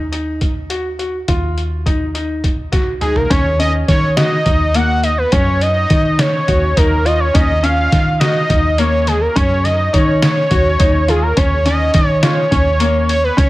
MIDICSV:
0, 0, Header, 1, 5, 480
1, 0, Start_track
1, 0, Key_signature, -6, "minor"
1, 0, Tempo, 575816
1, 1069, Time_signature, 7, 3, 24, 8
1, 11249, End_track
2, 0, Start_track
2, 0, Title_t, "Analog synth lead"
2, 0, Program_c, 0, 81
2, 2513, Note_on_c, 0, 68, 82
2, 2635, Note_on_c, 0, 70, 85
2, 2648, Note_off_c, 0, 68, 0
2, 2754, Note_on_c, 0, 73, 100
2, 2766, Note_off_c, 0, 70, 0
2, 2993, Note_off_c, 0, 73, 0
2, 2998, Note_on_c, 0, 75, 96
2, 3106, Note_off_c, 0, 75, 0
2, 3236, Note_on_c, 0, 73, 92
2, 3460, Note_off_c, 0, 73, 0
2, 3473, Note_on_c, 0, 75, 91
2, 3960, Note_on_c, 0, 78, 99
2, 3973, Note_off_c, 0, 75, 0
2, 4195, Note_on_c, 0, 75, 102
2, 4207, Note_off_c, 0, 78, 0
2, 4316, Note_on_c, 0, 71, 88
2, 4329, Note_off_c, 0, 75, 0
2, 4434, Note_on_c, 0, 73, 100
2, 4447, Note_off_c, 0, 71, 0
2, 4680, Note_on_c, 0, 75, 105
2, 4692, Note_off_c, 0, 73, 0
2, 5161, Note_on_c, 0, 73, 91
2, 5173, Note_off_c, 0, 75, 0
2, 5644, Note_on_c, 0, 70, 91
2, 5656, Note_off_c, 0, 73, 0
2, 5878, Note_on_c, 0, 75, 99
2, 5891, Note_off_c, 0, 70, 0
2, 6001, Note_on_c, 0, 73, 89
2, 6014, Note_off_c, 0, 75, 0
2, 6120, Note_on_c, 0, 75, 103
2, 6133, Note_off_c, 0, 73, 0
2, 6361, Note_on_c, 0, 77, 109
2, 6374, Note_off_c, 0, 75, 0
2, 6831, Note_off_c, 0, 77, 0
2, 6836, Note_on_c, 0, 75, 94
2, 7320, Note_on_c, 0, 73, 93
2, 7332, Note_off_c, 0, 75, 0
2, 7564, Note_on_c, 0, 68, 88
2, 7576, Note_off_c, 0, 73, 0
2, 7677, Note_on_c, 0, 70, 88
2, 7689, Note_off_c, 0, 68, 0
2, 7801, Note_on_c, 0, 73, 102
2, 7813, Note_off_c, 0, 70, 0
2, 8034, Note_on_c, 0, 75, 95
2, 8046, Note_off_c, 0, 73, 0
2, 8276, Note_on_c, 0, 73, 85
2, 8289, Note_off_c, 0, 75, 0
2, 8516, Note_off_c, 0, 73, 0
2, 8521, Note_on_c, 0, 73, 96
2, 9243, Note_on_c, 0, 68, 87
2, 9255, Note_off_c, 0, 73, 0
2, 9355, Note_on_c, 0, 70, 82
2, 9368, Note_off_c, 0, 68, 0
2, 9481, Note_on_c, 0, 73, 93
2, 9493, Note_off_c, 0, 70, 0
2, 9718, Note_off_c, 0, 73, 0
2, 9722, Note_on_c, 0, 75, 99
2, 10064, Note_off_c, 0, 75, 0
2, 10064, Note_on_c, 0, 73, 99
2, 10196, Note_off_c, 0, 73, 0
2, 10196, Note_on_c, 0, 73, 93
2, 10910, Note_off_c, 0, 73, 0
2, 10915, Note_on_c, 0, 73, 93
2, 11035, Note_on_c, 0, 71, 86
2, 11047, Note_off_c, 0, 73, 0
2, 11148, Note_on_c, 0, 73, 98
2, 11160, Note_off_c, 0, 71, 0
2, 11249, Note_off_c, 0, 73, 0
2, 11249, End_track
3, 0, Start_track
3, 0, Title_t, "Grand piano"
3, 0, Program_c, 1, 0
3, 100, Note_on_c, 1, 63, 61
3, 372, Note_off_c, 1, 63, 0
3, 581, Note_on_c, 1, 66, 63
3, 718, Note_off_c, 1, 66, 0
3, 824, Note_on_c, 1, 66, 55
3, 960, Note_off_c, 1, 66, 0
3, 1068, Note_on_c, 1, 65, 69
3, 1338, Note_off_c, 1, 65, 0
3, 1549, Note_on_c, 1, 63, 62
3, 1684, Note_off_c, 1, 63, 0
3, 1788, Note_on_c, 1, 63, 60
3, 2059, Note_off_c, 1, 63, 0
3, 2268, Note_on_c, 1, 66, 68
3, 2404, Note_off_c, 1, 66, 0
3, 2508, Note_on_c, 1, 63, 55
3, 2645, Note_off_c, 1, 63, 0
3, 2753, Note_on_c, 1, 61, 77
3, 2888, Note_off_c, 1, 61, 0
3, 2994, Note_on_c, 1, 61, 66
3, 3265, Note_off_c, 1, 61, 0
3, 3474, Note_on_c, 1, 66, 71
3, 3610, Note_off_c, 1, 66, 0
3, 3713, Note_on_c, 1, 63, 65
3, 3849, Note_off_c, 1, 63, 0
3, 3958, Note_on_c, 1, 58, 70
3, 4228, Note_off_c, 1, 58, 0
3, 4437, Note_on_c, 1, 61, 83
3, 4708, Note_off_c, 1, 61, 0
3, 4922, Note_on_c, 1, 63, 68
3, 5191, Note_off_c, 1, 63, 0
3, 5400, Note_on_c, 1, 66, 67
3, 5535, Note_off_c, 1, 66, 0
3, 5640, Note_on_c, 1, 63, 75
3, 5775, Note_off_c, 1, 63, 0
3, 5880, Note_on_c, 1, 65, 68
3, 6016, Note_off_c, 1, 65, 0
3, 6120, Note_on_c, 1, 61, 79
3, 6255, Note_off_c, 1, 61, 0
3, 6362, Note_on_c, 1, 61, 68
3, 6631, Note_off_c, 1, 61, 0
3, 6840, Note_on_c, 1, 66, 72
3, 6975, Note_off_c, 1, 66, 0
3, 7078, Note_on_c, 1, 63, 66
3, 7214, Note_off_c, 1, 63, 0
3, 7321, Note_on_c, 1, 58, 77
3, 7590, Note_off_c, 1, 58, 0
3, 7799, Note_on_c, 1, 61, 79
3, 8068, Note_off_c, 1, 61, 0
3, 8277, Note_on_c, 1, 63, 71
3, 8547, Note_off_c, 1, 63, 0
3, 8757, Note_on_c, 1, 66, 66
3, 8892, Note_off_c, 1, 66, 0
3, 8996, Note_on_c, 1, 63, 73
3, 9131, Note_off_c, 1, 63, 0
3, 9238, Note_on_c, 1, 65, 67
3, 9372, Note_off_c, 1, 65, 0
3, 9475, Note_on_c, 1, 61, 76
3, 9610, Note_off_c, 1, 61, 0
3, 9717, Note_on_c, 1, 61, 72
3, 9985, Note_off_c, 1, 61, 0
3, 10192, Note_on_c, 1, 65, 72
3, 10327, Note_off_c, 1, 65, 0
3, 10430, Note_on_c, 1, 61, 64
3, 10565, Note_off_c, 1, 61, 0
3, 10667, Note_on_c, 1, 58, 81
3, 10936, Note_off_c, 1, 58, 0
3, 11145, Note_on_c, 1, 61, 83
3, 11249, Note_off_c, 1, 61, 0
3, 11249, End_track
4, 0, Start_track
4, 0, Title_t, "Fretless electric bass"
4, 0, Program_c, 2, 35
4, 0, Note_on_c, 2, 39, 64
4, 1035, Note_off_c, 2, 39, 0
4, 1071, Note_on_c, 2, 39, 60
4, 2723, Note_off_c, 2, 39, 0
4, 2755, Note_on_c, 2, 39, 83
4, 3187, Note_off_c, 2, 39, 0
4, 3237, Note_on_c, 2, 51, 81
4, 3669, Note_off_c, 2, 51, 0
4, 3719, Note_on_c, 2, 39, 71
4, 4366, Note_off_c, 2, 39, 0
4, 4440, Note_on_c, 2, 42, 90
4, 4871, Note_off_c, 2, 42, 0
4, 4921, Note_on_c, 2, 51, 77
4, 5352, Note_off_c, 2, 51, 0
4, 5404, Note_on_c, 2, 39, 79
4, 5618, Note_off_c, 2, 39, 0
4, 5645, Note_on_c, 2, 39, 80
4, 6074, Note_off_c, 2, 39, 0
4, 6127, Note_on_c, 2, 39, 87
4, 6556, Note_off_c, 2, 39, 0
4, 6605, Note_on_c, 2, 51, 91
4, 7034, Note_off_c, 2, 51, 0
4, 7084, Note_on_c, 2, 39, 80
4, 7728, Note_off_c, 2, 39, 0
4, 7806, Note_on_c, 2, 42, 85
4, 8234, Note_off_c, 2, 42, 0
4, 8283, Note_on_c, 2, 51, 75
4, 8711, Note_off_c, 2, 51, 0
4, 8762, Note_on_c, 2, 39, 76
4, 8976, Note_off_c, 2, 39, 0
4, 9002, Note_on_c, 2, 39, 78
4, 9430, Note_off_c, 2, 39, 0
4, 9479, Note_on_c, 2, 39, 82
4, 9907, Note_off_c, 2, 39, 0
4, 9956, Note_on_c, 2, 51, 88
4, 10385, Note_off_c, 2, 51, 0
4, 10435, Note_on_c, 2, 39, 78
4, 11077, Note_off_c, 2, 39, 0
4, 11152, Note_on_c, 2, 37, 94
4, 11249, Note_off_c, 2, 37, 0
4, 11249, End_track
5, 0, Start_track
5, 0, Title_t, "Drums"
5, 105, Note_on_c, 9, 42, 61
5, 188, Note_off_c, 9, 42, 0
5, 343, Note_on_c, 9, 42, 48
5, 344, Note_on_c, 9, 36, 58
5, 426, Note_off_c, 9, 42, 0
5, 428, Note_off_c, 9, 36, 0
5, 584, Note_on_c, 9, 42, 63
5, 668, Note_off_c, 9, 42, 0
5, 828, Note_on_c, 9, 42, 46
5, 912, Note_off_c, 9, 42, 0
5, 1068, Note_on_c, 9, 42, 67
5, 1069, Note_on_c, 9, 36, 80
5, 1152, Note_off_c, 9, 36, 0
5, 1152, Note_off_c, 9, 42, 0
5, 1314, Note_on_c, 9, 42, 45
5, 1397, Note_off_c, 9, 42, 0
5, 1551, Note_on_c, 9, 36, 68
5, 1555, Note_on_c, 9, 42, 54
5, 1635, Note_off_c, 9, 36, 0
5, 1638, Note_off_c, 9, 42, 0
5, 1792, Note_on_c, 9, 42, 66
5, 1875, Note_off_c, 9, 42, 0
5, 2033, Note_on_c, 9, 36, 58
5, 2035, Note_on_c, 9, 42, 49
5, 2116, Note_off_c, 9, 36, 0
5, 2119, Note_off_c, 9, 42, 0
5, 2272, Note_on_c, 9, 38, 42
5, 2272, Note_on_c, 9, 42, 66
5, 2273, Note_on_c, 9, 36, 83
5, 2355, Note_off_c, 9, 38, 0
5, 2355, Note_off_c, 9, 42, 0
5, 2357, Note_off_c, 9, 36, 0
5, 2512, Note_on_c, 9, 42, 46
5, 2512, Note_on_c, 9, 45, 61
5, 2595, Note_off_c, 9, 42, 0
5, 2595, Note_off_c, 9, 45, 0
5, 2633, Note_on_c, 9, 43, 57
5, 2717, Note_off_c, 9, 43, 0
5, 2756, Note_on_c, 9, 36, 92
5, 2757, Note_on_c, 9, 42, 70
5, 2839, Note_off_c, 9, 36, 0
5, 2840, Note_off_c, 9, 42, 0
5, 2999, Note_on_c, 9, 42, 53
5, 3082, Note_off_c, 9, 42, 0
5, 3238, Note_on_c, 9, 36, 72
5, 3238, Note_on_c, 9, 38, 32
5, 3238, Note_on_c, 9, 42, 55
5, 3321, Note_off_c, 9, 36, 0
5, 3322, Note_off_c, 9, 38, 0
5, 3322, Note_off_c, 9, 42, 0
5, 3477, Note_on_c, 9, 38, 100
5, 3477, Note_on_c, 9, 42, 69
5, 3561, Note_off_c, 9, 38, 0
5, 3561, Note_off_c, 9, 42, 0
5, 3716, Note_on_c, 9, 42, 52
5, 3718, Note_on_c, 9, 36, 66
5, 3799, Note_off_c, 9, 42, 0
5, 3802, Note_off_c, 9, 36, 0
5, 3955, Note_on_c, 9, 42, 72
5, 4038, Note_off_c, 9, 42, 0
5, 4198, Note_on_c, 9, 42, 53
5, 4281, Note_off_c, 9, 42, 0
5, 4435, Note_on_c, 9, 42, 74
5, 4439, Note_on_c, 9, 36, 98
5, 4518, Note_off_c, 9, 42, 0
5, 4523, Note_off_c, 9, 36, 0
5, 4680, Note_on_c, 9, 42, 56
5, 4764, Note_off_c, 9, 42, 0
5, 4919, Note_on_c, 9, 42, 64
5, 4921, Note_on_c, 9, 36, 76
5, 5002, Note_off_c, 9, 42, 0
5, 5004, Note_off_c, 9, 36, 0
5, 5159, Note_on_c, 9, 38, 97
5, 5159, Note_on_c, 9, 42, 78
5, 5243, Note_off_c, 9, 38, 0
5, 5243, Note_off_c, 9, 42, 0
5, 5402, Note_on_c, 9, 42, 55
5, 5403, Note_on_c, 9, 36, 66
5, 5486, Note_off_c, 9, 42, 0
5, 5487, Note_off_c, 9, 36, 0
5, 5644, Note_on_c, 9, 36, 90
5, 5644, Note_on_c, 9, 42, 77
5, 5728, Note_off_c, 9, 36, 0
5, 5728, Note_off_c, 9, 42, 0
5, 5885, Note_on_c, 9, 42, 54
5, 5969, Note_off_c, 9, 42, 0
5, 6125, Note_on_c, 9, 36, 96
5, 6125, Note_on_c, 9, 42, 73
5, 6208, Note_off_c, 9, 36, 0
5, 6209, Note_off_c, 9, 42, 0
5, 6366, Note_on_c, 9, 42, 55
5, 6449, Note_off_c, 9, 42, 0
5, 6605, Note_on_c, 9, 36, 77
5, 6605, Note_on_c, 9, 38, 34
5, 6605, Note_on_c, 9, 42, 60
5, 6688, Note_off_c, 9, 36, 0
5, 6688, Note_off_c, 9, 38, 0
5, 6688, Note_off_c, 9, 42, 0
5, 6845, Note_on_c, 9, 38, 98
5, 6845, Note_on_c, 9, 42, 67
5, 6928, Note_off_c, 9, 38, 0
5, 6928, Note_off_c, 9, 42, 0
5, 7085, Note_on_c, 9, 36, 70
5, 7085, Note_on_c, 9, 42, 52
5, 7168, Note_off_c, 9, 36, 0
5, 7168, Note_off_c, 9, 42, 0
5, 7322, Note_on_c, 9, 42, 70
5, 7405, Note_off_c, 9, 42, 0
5, 7562, Note_on_c, 9, 38, 29
5, 7562, Note_on_c, 9, 42, 51
5, 7646, Note_off_c, 9, 38, 0
5, 7646, Note_off_c, 9, 42, 0
5, 7805, Note_on_c, 9, 36, 95
5, 7805, Note_on_c, 9, 42, 73
5, 7888, Note_off_c, 9, 36, 0
5, 7888, Note_off_c, 9, 42, 0
5, 8044, Note_on_c, 9, 38, 31
5, 8044, Note_on_c, 9, 42, 51
5, 8128, Note_off_c, 9, 38, 0
5, 8128, Note_off_c, 9, 42, 0
5, 8284, Note_on_c, 9, 36, 78
5, 8284, Note_on_c, 9, 42, 60
5, 8368, Note_off_c, 9, 36, 0
5, 8368, Note_off_c, 9, 42, 0
5, 8523, Note_on_c, 9, 38, 99
5, 8523, Note_on_c, 9, 42, 69
5, 8607, Note_off_c, 9, 38, 0
5, 8607, Note_off_c, 9, 42, 0
5, 8759, Note_on_c, 9, 42, 58
5, 8763, Note_on_c, 9, 36, 68
5, 8842, Note_off_c, 9, 42, 0
5, 8846, Note_off_c, 9, 36, 0
5, 9000, Note_on_c, 9, 42, 75
5, 9002, Note_on_c, 9, 36, 96
5, 9083, Note_off_c, 9, 42, 0
5, 9085, Note_off_c, 9, 36, 0
5, 9240, Note_on_c, 9, 38, 29
5, 9240, Note_on_c, 9, 42, 52
5, 9323, Note_off_c, 9, 38, 0
5, 9323, Note_off_c, 9, 42, 0
5, 9477, Note_on_c, 9, 42, 76
5, 9480, Note_on_c, 9, 36, 93
5, 9561, Note_off_c, 9, 42, 0
5, 9563, Note_off_c, 9, 36, 0
5, 9716, Note_on_c, 9, 38, 28
5, 9716, Note_on_c, 9, 42, 58
5, 9800, Note_off_c, 9, 38, 0
5, 9800, Note_off_c, 9, 42, 0
5, 9951, Note_on_c, 9, 42, 66
5, 9956, Note_on_c, 9, 36, 82
5, 10035, Note_off_c, 9, 42, 0
5, 10040, Note_off_c, 9, 36, 0
5, 10193, Note_on_c, 9, 38, 93
5, 10193, Note_on_c, 9, 42, 76
5, 10277, Note_off_c, 9, 38, 0
5, 10277, Note_off_c, 9, 42, 0
5, 10435, Note_on_c, 9, 36, 64
5, 10436, Note_on_c, 9, 42, 57
5, 10519, Note_off_c, 9, 36, 0
5, 10519, Note_off_c, 9, 42, 0
5, 10671, Note_on_c, 9, 42, 75
5, 10755, Note_off_c, 9, 42, 0
5, 10914, Note_on_c, 9, 42, 55
5, 10998, Note_off_c, 9, 42, 0
5, 11153, Note_on_c, 9, 36, 95
5, 11155, Note_on_c, 9, 42, 72
5, 11236, Note_off_c, 9, 36, 0
5, 11238, Note_off_c, 9, 42, 0
5, 11249, End_track
0, 0, End_of_file